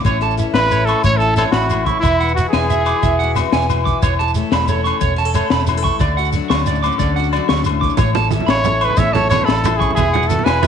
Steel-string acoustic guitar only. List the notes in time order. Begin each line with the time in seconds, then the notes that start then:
0.05 A2 C#4 E4, muted steel-string acoustic guitar stroke
0.22 A4
0.38 E3 E4
0.55 C#4
0.71 A2 A4
0.88 C#4
1.05 A2
1.22 E4
1.38 E3 E4
1.56 C#4
1.73 A2 E4
1.89 C#4
2.05 E3
2.22 B3
2.38 B3 E4
2.55 E4
2.70 F#4, muted steel-string acoustic guitar stroke
2.89 E4
3.05 E3
3.23 F#4
3.37 B3 F#4
3.54 E4
3.71 B2 F#4
3.89 E4
4.02 E3
4.21 muted steel-string acoustic guitar stroke
4.36 A3 A4
4.52 C#4
4.69 E3 A4
4.85 C#4
5.01 muted steel-string acoustic guitar stroke
5.16 F#4
5.25 A4
5.34 A3 A4
5.53 C#4
5.68 E3 F#4
5.77 A4
5.87 muted steel-string acoustic guitar stroke
6.01 D3
6.19 F#4
6.35 F#3 D4
6.52 C#4
6.69 A2 F#4
6.86 C#4
7.01 D3
7.20 F#4
7.36 F#3 D4
7.53 C#4
7.69 A2
7.84 C#4
8.01 A2
8.17 A4
8.33 E3 E4
8.50 C#4
8.66 A4, muted steel-string acoustic guitar stroke
8.83 C#4
8.97 A2
9.15 A4
9.31 E3 E4
9.47 C#4
9.64 A2 E4
9.81 C#4
10.14 F#4
10.30 B3 F#4
10.46 E4